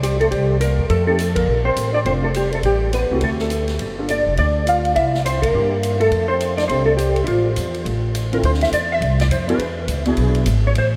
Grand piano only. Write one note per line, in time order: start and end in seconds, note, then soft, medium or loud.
1.07 1.18 A3 medium
1.07 1.18 C4 medium
1.07 1.18 D#4 medium
1.07 1.19 G4 medium
2.06 2.22 A3 medium
2.06 2.22 C4 soft
2.06 2.22 D4 soft
2.06 2.23 F4 medium
3.11 3.49 A3 medium
3.11 3.49 C4 medium
3.11 3.49 E4 medium
3.11 3.49 F#4 medium
3.98 4.08 A#3 medium
3.98 4.08 D4 medium
3.98 4.08 F4 medium
3.98 4.09 A4 medium
5.53 5.69 A#3 medium
5.53 5.70 D4 medium
5.53 5.70 E4 medium
5.53 5.70 G4 medium
6.70 6.86 C4 medium
6.70 6.86 D4 soft
6.70 6.86 G4 soft
6.70 6.86 A4 medium
8.32 8.70 D3 medium
8.32 8.70 C4 medium
8.32 8.70 E4 medium
8.32 8.70 F4 medium
8.32 8.71 A4 medium
9.47 9.58 B3 medium
9.47 9.58 D4 medium
9.47 9.58 E4 medium
9.47 9.59 F#4 medium
9.47 9.59 G#4 medium
10.06 10.44 B3 medium
10.06 10.44 D4 medium
10.06 10.44 E4 medium
10.06 10.44 F#4 medium
10.06 10.45 G#4 medium